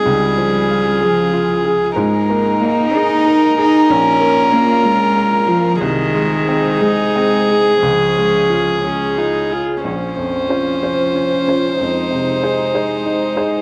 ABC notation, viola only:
X:1
M:6/8
L:1/8
Q:3/8=62
K:Bbdor
V:1 name="Viola"
F6 | E6 | F6 | E6 |
D3 D E F | D6 | E6 |]